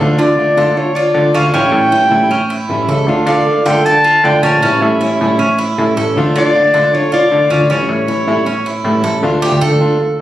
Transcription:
Already playing: cuban tres A4
0.00 analog synth bass D2, steel-string acoustic guitar D3 A3 D4 F4
0.18 analog synth bass D3, nylon-string guitar F4, clarinet D5, cuban tres D5
0.38 steel-string acoustic guitar D3 A3 D4 F4
0.57 analog synth bass D3, steel-string acoustic guitar A3 D4 F4, cuban tres A4
0.77 nylon-string guitar F4, clarinet C#5, muted steel-string acoustic guitar stroke
0.95 nylon-string guitar F4, cuban tres F4, clarinet D5
1.14 analog synth bass D3, steel-string acoustic guitar D3 A3 D4 F4
1.34 analog synth bass D2, cuban tres C#4, nylon-string guitar A4, clarinet F5
1.53 analog synth bass A1, steel-string acoustic guitar E3 G3 C#4 E4, cuban tres C#4, nylon-string guitar C#5, clarinet G5
1.72 analog synth bass A2
1.92 steel-string acoustic guitar E3 G3 C#4 E4, cuban tres E4
2.11 analog synth bass A2, steel-string acoustic guitar G3 C#4 E4
2.31 cuban tres C#4, muted steel-string acoustic guitar stroke
2.50 cuban tres E4
2.69 analog synth bass A1, steel-string acoustic guitar E3 G3 C#4 E4
2.88 analog synth bass C#2, cuban tres A4
3.07 analog synth bass D2, steel-string acoustic guitar D3 A3 D4 F4
3.26 analog synth bass D3, nylon-string guitar A4, cuban tres D5, clarinet F5
3.46 steel-string acoustic guitar D3 A3 D4 F4
3.66 analog synth bass D3, steel-string acoustic guitar A3 D4 F4, cuban tres A4, nylon-string guitar A#4, clarinet G5
3.85 nylon-string guitar D5, clarinet A5, muted steel-string acoustic guitar stroke
4.04 cuban tres F4
4.24 analog synth bass D3, steel-string acoustic guitar D3 A3 D4 F4, nylon-string guitar D5, clarinet G5
4.43 analog synth bass A#1, cuban tres C#4, nylon-string guitar C#5, clarinet A5
4.62 analog synth bass A1, steel-string acoustic guitar E3 G3 C#4 E4, cuban tres C#4
4.82 analog synth bass A2, nylon-string guitar G4, clarinet E5
5.01 steel-string acoustic guitar E3 G3 C#4 E4, cuban tres E4
5.21 analog synth bass A2, steel-string acoustic guitar G3 C#4 E4
5.39 cuban tres C#4, muted steel-string acoustic guitar stroke
5.58 cuban tres E4
5.78 analog synth bass A2, steel-string acoustic guitar E3 G3 C#4 E4
5.97 analog synth bass A1, cuban tres A4
6.16 analog synth bass D2, steel-string acoustic guitar D3 A3 D4 F4
6.36 analog synth bass D3, nylon-string guitar F4, cuban tres D5, clarinet D5
6.55 steel-string acoustic guitar D3 A3 D4 F4
6.74 analog synth bass D3, steel-string acoustic guitar A3 D4 F4, cuban tres A4
6.93 nylon-string guitar F4, clarinet C#5, muted steel-string acoustic guitar stroke
7.12 cuban tres F4, nylon-string guitar F4, clarinet D5
7.31 analog synth bass D3, steel-string acoustic guitar D3 A3 D4 F4
7.50 analog synth bass D2, cuban tres C#4, nylon-string guitar F4, clarinet D5
7.69 analog synth bass A1, steel-string acoustic guitar E3 G3 C#4 E4, cuban tres C#4, nylon-string guitar E4, clarinet C#5
7.89 analog synth bass A2
8.07 steel-string acoustic guitar E3 G3 C#4 E4, cuban tres E4
8.27 analog synth bass A2, steel-string acoustic guitar G3 C#4 E4
8.46 cuban tres C#4, muted steel-string acoustic guitar stroke
8.66 cuban tres E4
8.84 analog synth bass A2, steel-string acoustic guitar E3 G3 C#4 E4
9.04 analog synth bass A1, cuban tres A4
9.22 analog synth bass D2, steel-string acoustic guitar D3 A3 D4 F4
9.42 cuban tres G4
9.52 analog synth bass D2
9.61 steel-string acoustic guitar D3 A3 D4 F4, cuban tres A4
9.71 analog synth bass D2
9.81 steel-string acoustic guitar A3 D4 F4
10.00 muted steel-string acoustic guitar stroke

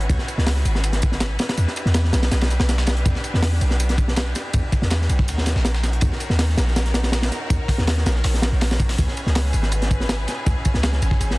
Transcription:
Already playing: string section C#4 E4 F#4 B4
0.01 closed hi-hat
0.09 808-style bass C#2, kick, ride, tambourine
0.19 snare
0.28 ride, tambourine
0.38 808-style bass C#2, snare
0.47 snare, open hi-hat, ride
0.56 snare
0.65 808-style bass G#1, ride, tambourine
0.75 snare
0.84 ride, tambourine
0.93 snare, closed hi-hat
1.02 kick, ride, tambourine
1.12 snare
1.20 snare, ride, tambourine
1.39 snare, ride, tambourine
1.49 snare, ride
1.57 808-style bass E2, string section D4 G4, ride, tambourine
1.68 snare
1.76 ride, tambourine
1.86 808-style bass E2, snare
1.94 snare, ride, tambourine
2.04 snare
2.13 808-style bass B1, snare, ride, tambourine
2.23 snare, ride
2.31 808-style bass B1, snare, ride, tambourine
2.41 snare, ride
2.50 snare, ride, tambourine
2.60 808-style bass B1, snare, ride
2.69 snare, ride, tambourine
2.78 snare, ride
2.87 snare, ride, tambourine
2.97 closed hi-hat
3.05 808-style bass E2, kick, ride, tambourine
3.15 snare
3.24 ride, tambourine
3.34 808-style bass E2, snare
3.42 snare, open hi-hat, ride
3.52 snare
3.61 808-style bass B1, ride, tambourine
3.71 snare
3.80 ride, tambourine
3.89 snare, closed hi-hat
3.98 kick, ride, tambourine
4.08 snare
4.16 snare, ride, tambourine
4.35 snare, ride, tambourine
4.53 808-style bass E2, kick, ride, tambourine
4.72 kick, ride, tambourine
4.82 808-style bass E2, snare
4.91 snare, ride, tambourine
5.01 snare
5.09 808-style bass B1, ride, tambourine
5.19 kick, snare
5.28 808-style bass D#2, string section C#4 D#4 F#4 A#4, ride, tambourine
5.38 snare
5.46 snare, ride, tambourine
5.56 808-style bass A#1, snare
5.65 snare, ride, tambourine
5.74 snare
5.83 snare, ride, tambourine
5.93 closed hi-hat
6.01 808-style bass D#2, kick, ride, tambourine
6.12 snare
6.20 ride, tambourine
6.30 808-style bass D#2, snare
6.39 snare, open hi-hat, ride
6.49 snare
6.57 808-style bass A#1, snare, ride, tambourine
6.68 snare
6.76 snare, ride, tambourine
6.86 snare, closed hi-hat
6.94 snare, ride, tambourine
7.03 snare, ride
7.12 snare, ride, tambourine
7.22 snare, ride
7.31 snare, ride, tambourine
7.50 808-style bass D#2, kick, ride, tambourine
7.68 kick, snare, open hi-hat, ride
7.78 808-style bass D#2, snare
7.87 snare, open hi-hat, ride
7.97 snare
8.06 808-style bass A#1, snare, ride, tambourine
8.15 snare
8.24 808-style bass A#1, snare, open hi-hat, ride
8.34 snare
8.42 snare, ride, tambourine
8.52 808-style bass A#1, snare
8.61 snare, open hi-hat, ride
8.71 snare, ride
8.80 808-style bass A#1, kick, ride, tambourine
8.89 snare, open hi-hat
8.98 808-style bass C#2, string section E4 G#4 B4, kick, ride, tambourine
9.08 snare
9.17 ride, tambourine
9.26 808-style bass C#2, snare
9.35 snare, open hi-hat, ride
9.45 snare
9.53 808-style bass G#1, ride, tambourine
9.63 snare
9.72 ride, tambourine
9.82 snare, closed hi-hat
9.91 kick, ride, tambourine
10.00 snare
10.09 snare, ride, tambourine
10.28 snare, ride, tambourine
10.46 808-style bass C#2, kick, ride, tambourine
10.65 kick, ride, tambourine
10.74 808-style bass C#2, snare
10.83 snare, ride, tambourine
10.93 snare
11.02 808-style bass G#1, ride, tambourine
11.11 kick, snare
11.20 808-style bass G#1, string section C#5, ride, tambourine
11.31 snare

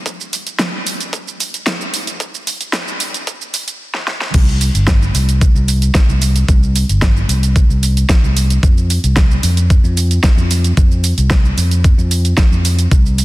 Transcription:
0.06 kick, closed hi-hat, shaker
0.21 shaker
0.33 open hi-hat, shaker
0.47 closed hi-hat, shaker
0.59 kick, snare, closed hi-hat, shaker
0.87 open hi-hat, shaker
1.01 closed hi-hat, shaker
1.13 kick, closed hi-hat, shaker
1.28 shaker
1.40 open hi-hat, shaker
1.54 closed hi-hat, shaker
1.66 kick, snare, closed hi-hat, shaker
1.81 shaker
1.94 open hi-hat, shaker
2.07 closed hi-hat, shaker
2.20 kick, closed hi-hat, shaker
2.35 shaker
2.47 open hi-hat, shaker
2.61 closed hi-hat, shaker
2.73 kick, snare, closed hi-hat, shaker
2.88 shaker
3.00 open hi-hat, shaker
3.14 closed hi-hat, shaker
3.27 kick, closed hi-hat, shaker
3.41 shaker
3.54 open hi-hat, shaker
3.68 closed hi-hat, shaker
3.94 snare
4.07 snare
4.21 snare
4.34 fingered electric bass C2, kick, closed hi-hat, crash, shaker
4.48 shaker
4.61 open hi-hat, shaker
4.74 fingered electric bass G1, closed hi-hat, shaker
4.87 kick, snare, closed hi-hat, shaker
5.02 shaker
5.14 fingered electric bass C2, open hi-hat, shaker
5.29 closed hi-hat, shaker
5.41 kick, closed hi-hat, shaker
5.55 fingered electric bass C2, shaker
5.68 open hi-hat, shaker
5.82 closed hi-hat, shaker
5.95 kick, snare, closed hi-hat, shaker
6.09 fingered electric bass C2, shaker
6.22 open hi-hat, shaker
6.36 closed hi-hat, shaker
6.49 fingered electric bass C2, kick, closed hi-hat, shaker
6.63 shaker
6.76 open hi-hat, shaker
6.89 fingered electric bass G1, closed hi-hat, shaker
7.02 kick, snare, closed hi-hat, shaker
7.17 shaker
7.29 fingered electric bass C2, open hi-hat, shaker
7.43 closed hi-hat, shaker
7.56 kick, closed hi-hat, shaker
7.69 fingered electric bass C2, shaker
7.83 open hi-hat, shaker
7.97 closed hi-hat, shaker
8.09 kick, snare, closed hi-hat, shaker
8.23 fingered electric bass C2, shaker
8.37 open hi-hat, shaker
8.50 closed hi-hat, shaker
8.63 fingered electric bass F2, kick, closed hi-hat, shaker
8.78 shaker
8.90 open hi-hat, shaker
9.04 fingered electric bass C2, closed hi-hat, shaker
9.16 kick, snare, closed hi-hat, shaker
9.31 shaker
9.43 fingered electric bass F2, open hi-hat, shaker
9.57 closed hi-hat, shaker
9.70 kick, closed hi-hat, shaker
9.84 fingered electric bass F2, shaker
9.97 open hi-hat, shaker
10.11 closed hi-hat, shaker
10.23 kick, snare, closed hi-hat, shaker
10.37 fingered electric bass F2, shaker
10.51 open hi-hat, shaker
10.64 closed hi-hat, shaker
10.77 fingered electric bass F2, kick, closed hi-hat, shaker
10.91 shaker
11.04 open hi-hat, shaker
11.18 fingered electric bass C2, closed hi-hat, shaker
11.30 kick, snare, closed hi-hat, shaker
11.45 shaker
11.57 fingered electric bass F2, open hi-hat, shaker
11.71 closed hi-hat, shaker
11.84 kick, closed hi-hat, shaker
11.98 fingered electric bass F2, shaker
12.11 open hi-hat, shaker
12.25 closed hi-hat, shaker
12.37 kick, snare, closed hi-hat, shaker
12.52 fingered electric bass F2, shaker
12.65 open hi-hat, shaker
12.79 closed hi-hat, shaker
12.91 fingered electric bass C2, kick, closed hi-hat, shaker
13.06 shaker
13.18 open hi-hat, shaker

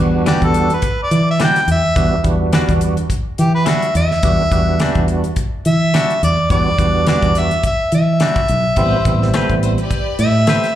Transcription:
Already playing: fingered electric bass E2
0.00 tonewheel organ G3 B3 D4 F#4
0.26 clean electric guitar E3 G3 D4 F#4, harmonica G4, snare, closed hi-hat
0.42 fingered electric bass E2, harmonica A4, kick, closed hi-hat
0.54 closed hi-hat
0.70 harmonica B4, closed hi-hat
0.82 kick, closed hi-hat
1.03 harmonica D5
1.11 fingered electric bass E3, closed hi-hat
1.30 harmonica E5
1.40 clean electric guitar E3 G3 D4 F#4, harmonica G5, snare, closed hi-hat
1.56 snare, closed hi-hat
1.68 fingered electric bass E2, harmonica E5, closed hi-hat
1.96 fingered electric bass E2, tonewheel organ G3 B3 D4 F#4, kick, closed hi-hat
2.24 fingered electric bass E2, tonewheel organ G3 B3 D4 F#4, kick, closed hi-hat
2.53 clean electric guitar E3 G3 D4 F#4, snare, closed hi-hat
2.69 fingered electric bass E2, kick, closed hi-hat
2.81 closed hi-hat
2.97 closed hi-hat
3.10 kick, closed hi-hat
3.38 fingered electric bass E3, harmonica G4, closed hi-hat
3.55 harmonica B4
3.66 clean electric guitar E3 G3 D4 F#4, harmonica E5, snare, closed hi-hat
3.82 closed hi-hat
3.95 fingered electric bass E2, harmonica E5, closed hi-hat
4.11 snare
4.23 fingered electric bass E2, tonewheel organ G3 B3 D4 F#4, kick, closed hi-hat
4.51 fingered electric bass E2, tonewheel organ G3 B3 D4 F#4, kick, closed hi-hat
4.80 clean electric guitar E3 G3 D4 F#4, snare, closed hi-hat
4.95 fingered electric bass E2, kick, closed hi-hat
5.08 closed hi-hat
5.24 closed hi-hat
5.36 kick, closed hi-hat
5.65 fingered electric bass E3, harmonica E5, closed hi-hat
5.94 clean electric guitar E3 G3 D4 F#4, snare, closed hi-hat
6.10 closed hi-hat
6.23 fingered electric bass E2, harmonica D5, closed hi-hat
6.50 fingered electric bass E2, tonewheel organ G3 B3 D4 F#4, harmonica D5, kick, closed hi-hat
6.78 fingered electric bass E2, tonewheel organ G3 B3 D4 F#4, kick, closed hi-hat
7.07 clean electric guitar E3 G3 D4 F#4, harmonica D5, snare, closed hi-hat
7.22 fingered electric bass E2, kick, closed hi-hat
7.35 harmonica E5, snare, closed hi-hat
7.51 closed hi-hat
7.63 harmonica E5, kick, closed hi-hat
7.92 fingered electric bass E3, harmonica E5, closed hi-hat
8.20 clean electric guitar E3 G3 D4 F#4, snare, closed hi-hat
8.36 kick, closed hi-hat
8.48 fingered electric bass B1, closed hi-hat
8.76 fingered electric bass A1, tonewheel organ G3 B3 C4 E4, string section G4 B4 C5, kick, closed hi-hat
9.05 fingered electric bass A1, tonewheel organ G3 B3 C4 E4, kick, closed hi-hat
9.22 snare
9.34 clean electric guitar A3 C4 G4 B4, snare, closed hi-hat
9.50 fingered electric bass A1, kick, closed hi-hat
9.62 string section B4 C5, closed hi-hat
9.78 string section G4 B4 D5, closed hi-hat
9.91 kick, closed hi-hat
10.19 fingered electric bass A2, harmonica E5, closed hi-hat
10.47 clean electric guitar A3 C4 G4 B4, snare, closed hi-hat
10.64 snare, closed hi-hat

